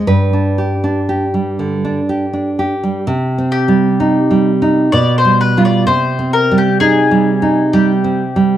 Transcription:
<<
  \new Staff \with { instrumentName = "Mandolin" } { \time 3/4 \key c \minor \tempo 4 = 64 r2. | r8 g'4. d''16 c''16 b'16 d''16 | c''8 bes'16 g'16 aes'4 g'4 | }
  \new Staff \with { instrumentName = "Nylon-string guitar" } { \time 3/4 \key c \minor << { b'2~ b'8 r8 | r2. | r2. | } \\ { g,16 d'16 g'16 d'16 g'16 g16 d16 d'16 g'16 d'16 g'16 g16 | \tuplet 3/2 { c8 c'8 g8 ees'8 g8 ees'8 b,8 g8 <g f'>8 } | \tuplet 3/2 { c8 c'8 g8 ees'8 g8 ees'8 g8 c'8 g8 } | } >> }
>>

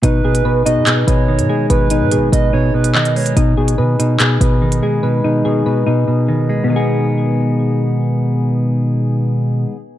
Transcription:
<<
  \new Staff \with { instrumentName = "Soft synth lead" } { \time 4/4 \key gis \minor \tempo 4 = 144 b'4. dis''4 cis''4. | b'4. dis''8 cis''8 b'8 dis''8 cis''8 | r1 | r1 |
r1 | r1 | }
  \new Staff \with { instrumentName = "Synth keys" } { \time 4/4 \key gis \minor dis'8 gis'8 b'8 dis'8 gis'8 b'4 gis'8 | b'8 dis'8 gis'8 b'8 dis'2 | dis'8 gis'8 b'8 dis'8 gis'8 b'4 gis'8 | b'8 dis'8 gis'8 b'8 dis'2 |
<b dis' gis'>1~ | <b dis' gis'>1 | }
  \new Staff \with { instrumentName = "Clean electric guitar" } { \clef bass \time 4/4 \key gis \minor b,8 b,8 b,8 b,8 b,8 b,8 dis8 gis8 | b,8 b,8 b,8 b,8 b,8 b,8 dis8 gis8 | b,8 b,8 b,8 b,8 b,8 b,8 dis8 gis8 | b,8 b,8 b,8 b,8 b,8 b,8 dis8 gis8 |
<b, dis gis b>1~ | <b, dis gis b>1 | }
  \new Staff \with { instrumentName = "808-style bass" } { \clef bass \time 4/4 \key gis \minor gis,,4.~ gis,,16 gis,8. gis,,8. gis,16 r8 | gis,,8. gis,16. gis,,16. gis,,4. r4 | gis,,4 dis8 r4 gis,,4 r8 | r1 |
r1 | r1 | }
  \new DrumStaff \with { instrumentName = "Drums" } \drummode { \time 4/4 hh8. hh16 r8 hh8 <hc hh>8 hh8 r16 hh8. | hh8 hh8 hh8 hh8 r8. hh16 hc16 hh16 hho16 hh16 | hh8. hh16 r8 hh8 <hc hh>8 hh8 r16 hh8. | r4 r4 r4 r4 |
r4 r4 r4 r4 | r4 r4 r4 r4 | }
>>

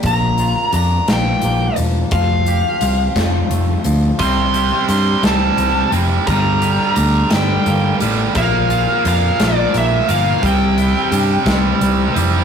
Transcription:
<<
  \new Staff \with { instrumentName = "Lead electric guitar" } { \time 6/8 \key bes \lydian \tempo 4. = 58 bes''4 bes''8 g''4 r8 | f''2 r4 | c'''4 c'''8 a''4 r8 | bes''4 bes''8 g''4 r8 |
f''4 f''8 d''8 e''8 f''8 | g''2~ g''8 r8 | }
  \new Staff \with { instrumentName = "Clean electric guitar" } { \clef bass \time 6/8 \key bes \lydian bes,8 f'8 d'8 f8 bes8 f8 | f8 g'8 c'8 f8 a8 f8 | c8 g'8 d'8 e8 c'8 e8 | g8 g'8 d'8 g8 bes8 g8 |
bes,8 f'8 d'8 f8 bes8 f8 | c8 e'8 d'8 e8 g8 e8 | }
  \new Staff \with { instrumentName = "Distorted electric guitar" } { \clef bass \time 6/8 \key bes \lydian r2. | r2. | <c g c'>2~ <c g c'>8 <c g c'>8 | <g, d g>2~ <g, d g>8 <g, d g>8 |
<bes, f bes>2~ <bes, f bes>8 <bes, f bes>8 | <c g c'>2~ <c g c'>8 <c g c'>8 | }
  \new Staff \with { instrumentName = "Picked electric bass" } { \clef bass \time 6/8 \key bes \lydian bes,,4 f,8 bes,,8 bes,,8 e,,8 | f,,4 c,8 f,,8 f,,8 d,8 | c,4 g,8 c,8 c,8 f,,8 | g,,4 d,8 g,,8 g,,8 a,,8 |
bes,,4 f,8 bes,,8 bes,,8 g,,8 | c,4 g,8 c,8 c,8 f,,8 | }
  \new DrumStaff \with { instrumentName = "Drums" } \drummode { \time 6/8 <hh bd>8 hh8 hh8 <hh sn>8 hh8 hh8 | <hh bd>8 hh8 hh8 <hh bd sn>8 hh8 hh8 | <hh bd>8 hh8 hh8 <hh sn>8 hh8 hh8 | <hh bd>8 hh8 hh8 <hh sn>8 hh8 hh8 |
<hh bd>8 hh8 hh8 <hh sn>8 hh8 hh8 | <hh bd>8 hh8 hh8 <hh bd sn>8 hh8 hh8 | }
>>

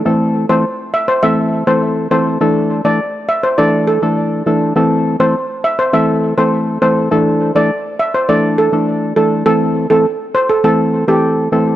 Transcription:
<<
  \new Staff \with { instrumentName = "Steel pan" } { \time 4/4 \key a \minor \tempo 4 = 102 r8. c''16 r8 e''16 c''16 e''16 r8 c''16 r8 c''16 r16 | r8. d''16 r8 e''16 c''16 d''16 r16 a'16 r4 r16 | r8. c''16 r8 e''16 c''16 e''16 r8 c''16 r8 c''16 r16 | r8. d''16 r8 e''16 c''16 d''16 r16 a'16 r8. a'16 r16 |
a'16 r8 a'16 r8 c''16 a'16 a'16 r8 g'16 r4 | }
  \new Staff \with { instrumentName = "Synth stab" } { \time 4/4 \key a \minor <e a c' a'>8. <e a c' a'>16 r4 <e a c' a'>8. <e a c' a'>8. <e a c' a'>8 | <e a d' a'>8. <e a d' a'>16 r4 <e a d' a'>8. <e a d' a'>8. <e a d' a'>8 | <e a c' a'>8. <e a c' a'>16 r4 <e a c' a'>8. <e a c' a'>8. <e a c' a'>8 | <e a d' a'>8. <e a d' a'>16 r4 <e a d' a'>8. <e a d' a'>8. <e a d' a'>8 |
<e a c' a'>8. <e a c' a'>16 r4 <e a c' a'>8. <e a c' a'>8. <e a c' a'>8 | }
>>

